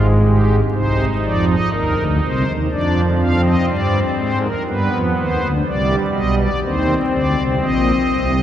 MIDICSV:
0, 0, Header, 1, 2, 480
1, 0, Start_track
1, 0, Key_signature, -3, "minor"
1, 0, Tempo, 981997
1, 361, Time_signature, 4, 2, 24, 8
1, 4119, End_track
2, 0, Start_track
2, 0, Title_t, "Pipe organ"
2, 0, Program_c, 0, 19
2, 0, Note_on_c, 0, 32, 83
2, 0, Note_on_c, 0, 44, 80
2, 0, Note_on_c, 0, 56, 70
2, 120, Note_on_c, 0, 67, 66
2, 270, Note_off_c, 0, 67, 0
2, 295, Note_off_c, 0, 32, 0
2, 295, Note_off_c, 0, 44, 0
2, 295, Note_off_c, 0, 56, 0
2, 363, Note_on_c, 0, 36, 67
2, 363, Note_on_c, 0, 63, 71
2, 363, Note_on_c, 0, 72, 85
2, 364, Note_on_c, 0, 48, 70
2, 513, Note_off_c, 0, 36, 0
2, 513, Note_off_c, 0, 72, 0
2, 514, Note_off_c, 0, 48, 0
2, 607, Note_on_c, 0, 53, 67
2, 607, Note_on_c, 0, 74, 78
2, 609, Note_on_c, 0, 41, 65
2, 710, Note_off_c, 0, 74, 0
2, 729, Note_on_c, 0, 75, 85
2, 755, Note_off_c, 0, 53, 0
2, 757, Note_off_c, 0, 41, 0
2, 830, Note_off_c, 0, 75, 0
2, 845, Note_on_c, 0, 51, 70
2, 847, Note_on_c, 0, 39, 72
2, 847, Note_on_c, 0, 70, 86
2, 948, Note_off_c, 0, 51, 0
2, 949, Note_off_c, 0, 39, 0
2, 965, Note_on_c, 0, 38, 72
2, 965, Note_on_c, 0, 50, 72
2, 995, Note_off_c, 0, 70, 0
2, 1068, Note_off_c, 0, 38, 0
2, 1068, Note_off_c, 0, 50, 0
2, 1087, Note_on_c, 0, 48, 72
2, 1087, Note_on_c, 0, 72, 83
2, 1089, Note_on_c, 0, 36, 71
2, 1189, Note_off_c, 0, 48, 0
2, 1190, Note_off_c, 0, 36, 0
2, 1190, Note_off_c, 0, 63, 0
2, 1204, Note_on_c, 0, 51, 71
2, 1205, Note_on_c, 0, 39, 68
2, 1235, Note_off_c, 0, 72, 0
2, 1307, Note_off_c, 0, 39, 0
2, 1307, Note_off_c, 0, 51, 0
2, 1321, Note_on_c, 0, 41, 74
2, 1323, Note_on_c, 0, 53, 73
2, 1323, Note_on_c, 0, 62, 69
2, 1324, Note_on_c, 0, 74, 81
2, 1472, Note_off_c, 0, 62, 0
2, 1473, Note_off_c, 0, 74, 0
2, 1565, Note_on_c, 0, 77, 86
2, 1567, Note_on_c, 0, 60, 69
2, 1667, Note_off_c, 0, 77, 0
2, 1685, Note_on_c, 0, 75, 82
2, 1734, Note_off_c, 0, 41, 0
2, 1735, Note_off_c, 0, 53, 0
2, 1787, Note_off_c, 0, 75, 0
2, 1803, Note_on_c, 0, 43, 74
2, 1804, Note_on_c, 0, 55, 71
2, 1805, Note_on_c, 0, 74, 83
2, 1952, Note_off_c, 0, 43, 0
2, 1952, Note_off_c, 0, 55, 0
2, 1953, Note_off_c, 0, 74, 0
2, 2037, Note_on_c, 0, 56, 72
2, 2038, Note_on_c, 0, 44, 74
2, 2039, Note_on_c, 0, 72, 91
2, 2143, Note_off_c, 0, 72, 0
2, 2158, Note_on_c, 0, 70, 84
2, 2183, Note_off_c, 0, 60, 0
2, 2187, Note_off_c, 0, 44, 0
2, 2187, Note_off_c, 0, 56, 0
2, 2262, Note_off_c, 0, 70, 0
2, 2284, Note_on_c, 0, 55, 78
2, 2284, Note_on_c, 0, 59, 74
2, 2285, Note_on_c, 0, 43, 73
2, 2286, Note_on_c, 0, 71, 84
2, 2386, Note_off_c, 0, 43, 0
2, 2386, Note_off_c, 0, 55, 0
2, 2405, Note_on_c, 0, 53, 77
2, 2406, Note_on_c, 0, 41, 73
2, 2433, Note_off_c, 0, 71, 0
2, 2506, Note_off_c, 0, 53, 0
2, 2507, Note_off_c, 0, 41, 0
2, 2530, Note_on_c, 0, 51, 75
2, 2531, Note_on_c, 0, 72, 87
2, 2532, Note_on_c, 0, 39, 68
2, 2629, Note_off_c, 0, 51, 0
2, 2630, Note_off_c, 0, 39, 0
2, 2644, Note_on_c, 0, 50, 78
2, 2646, Note_on_c, 0, 38, 73
2, 2676, Note_off_c, 0, 72, 0
2, 2694, Note_off_c, 0, 59, 0
2, 2746, Note_off_c, 0, 50, 0
2, 2747, Note_off_c, 0, 38, 0
2, 2760, Note_on_c, 0, 36, 77
2, 2761, Note_on_c, 0, 48, 72
2, 2763, Note_on_c, 0, 55, 78
2, 2763, Note_on_c, 0, 74, 91
2, 2909, Note_off_c, 0, 36, 0
2, 2910, Note_off_c, 0, 48, 0
2, 2911, Note_off_c, 0, 74, 0
2, 3001, Note_on_c, 0, 47, 71
2, 3001, Note_on_c, 0, 75, 84
2, 3002, Note_on_c, 0, 35, 69
2, 3105, Note_off_c, 0, 75, 0
2, 3123, Note_on_c, 0, 74, 86
2, 3151, Note_off_c, 0, 47, 0
2, 3152, Note_off_c, 0, 35, 0
2, 3177, Note_off_c, 0, 55, 0
2, 3226, Note_off_c, 0, 74, 0
2, 3242, Note_on_c, 0, 51, 78
2, 3242, Note_on_c, 0, 60, 78
2, 3244, Note_on_c, 0, 39, 79
2, 3244, Note_on_c, 0, 72, 85
2, 3391, Note_off_c, 0, 51, 0
2, 3392, Note_off_c, 0, 39, 0
2, 3393, Note_off_c, 0, 72, 0
2, 3485, Note_on_c, 0, 38, 79
2, 3485, Note_on_c, 0, 50, 75
2, 3485, Note_on_c, 0, 74, 85
2, 3587, Note_off_c, 0, 38, 0
2, 3587, Note_off_c, 0, 50, 0
2, 3604, Note_on_c, 0, 48, 78
2, 3605, Note_on_c, 0, 36, 74
2, 3632, Note_off_c, 0, 74, 0
2, 3706, Note_off_c, 0, 48, 0
2, 3707, Note_off_c, 0, 36, 0
2, 3720, Note_on_c, 0, 34, 76
2, 3720, Note_on_c, 0, 75, 91
2, 3721, Note_on_c, 0, 46, 68
2, 3869, Note_off_c, 0, 34, 0
2, 3869, Note_off_c, 0, 46, 0
2, 3959, Note_on_c, 0, 48, 75
2, 3960, Note_on_c, 0, 36, 74
2, 4066, Note_off_c, 0, 60, 0
2, 4107, Note_off_c, 0, 48, 0
2, 4108, Note_off_c, 0, 36, 0
2, 4119, Note_off_c, 0, 75, 0
2, 4119, End_track
0, 0, End_of_file